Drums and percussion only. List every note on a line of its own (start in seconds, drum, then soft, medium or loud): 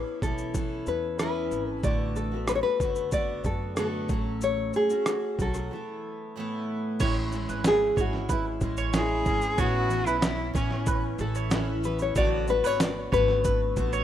0.22 kick medium
0.22 shaker soft
0.38 shaker soft
0.54 kick medium
0.54 shaker medium
0.86 shaker soft
1.19 cross-stick medium
1.19 shaker medium
1.51 shaker soft
1.83 kick loud
1.83 shaker medium
2.16 shaker soft
2.48 cross-stick medium
2.48 shaker medium
2.80 kick medium
2.80 shaker soft
2.95 shaker soft
3.12 kick medium
3.12 shaker medium
3.44 kick medium
3.44 shaker soft
3.76 cross-stick medium
3.76 shaker medium
4.09 kick medium
4.09 shaker soft
4.41 shaker medium
4.73 shaker soft
4.90 shaker medium
5.06 cross-stick loud
5.06 shaker medium
5.39 kick medium
5.39 shaker medium
5.54 cross-stick soft
5.54 shaker soft
7.00 kick loud
7.00 crash medium
7.00 shaker medium
7.32 shaker soft
7.49 shaker soft
7.64 snare loud
7.64 shaker medium
7.97 kick medium
7.97 shaker medium
8.13 snare soft
8.29 kick medium
8.29 shaker medium
8.61 kick medium
8.61 shaker soft
8.77 shaker soft
8.93 snare medium
8.93 shaker medium
9.26 kick medium
9.26 shaker soft
9.41 shaker soft
9.58 kick loud
9.58 shaker medium
9.90 shaker soft
10.07 shaker medium
10.22 snare loud
10.22 shaker medium
10.55 kick medium
10.55 shaker medium
10.71 snare soft
10.86 kick loud
10.86 shaker medium
11.19 shaker soft
11.35 shaker soft
11.51 snare loud
11.51 shaker medium
11.84 shaker soft
11.99 shaker soft
12.15 kick loud
12.15 shaker medium
12.48 shaker soft
12.64 shaker medium
12.80 snare loud
12.80 shaker medium
13.13 kick medium
13.13 shaker medium
13.28 snare soft
13.44 kick medium
13.44 shaker medium
13.76 kick medium
13.76 shaker soft
13.93 shaker medium